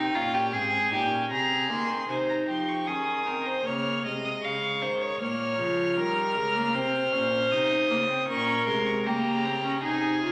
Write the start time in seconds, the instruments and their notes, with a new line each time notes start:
Already playing: cello C3, viola C4, violin D#4 G5
0.13 cello A#2, viola C#4, violin F4
0.34 violin G4
0.52 cello G#2, viola C4, violin G#4 G#5
0.91 cello A#2, viola D#4, violin G4
1.10 viola C#4
1.30 cello C3, viola C4, violin G#4 A#5
1.69 cello D#3, viola A#3, violin C6
1.89 viola C4
2.08 cello C3, viola D#4, violin C5 G#5
2.28 violin A#5
2.47 cello F3, violin G4 C6
2.68 violin C#6
2.87 cello D#3, viola C#4, violin G#4 D#6
3.26 viola C4, violin A#4
3.46 violin C5
3.65 cello C#3, viola A#3, violin C#5 F6
4.04 cello C3, viola G#3, violin D#5 F6
4.24 violin D#6
4.43 cello C#3, violin F5 C#6
4.82 cello D#3, violin C5
5.01 violin C#5
5.20 cello A#2, viola A#3, violin C#5 F6
5.58 cello C#3, viola F3
5.97 cello D#3, viola G3, violin A#4
6.35 cello C#3, viola G#3
6.55 viola A#3
6.74 cello C3, viola C4, violin C5
7.12 cello A#2, viola C#4
7.51 cello C3, viola D#4, violin D#6
7.89 cello C#3, viola A#3
8.09 viola C4
8.28 cello A#2, viola C#4, violin A#4 C#6
8.67 cello C3, viola G#3, violin C6
8.86 violin C#6
9.05 cello C#3, viola A#3, violin G4 A#5
9.44 viola C4
9.64 viola C#4
9.83 cello C3, viola D#4, violin G#4 G#5
10.22 cello C#3, viola F4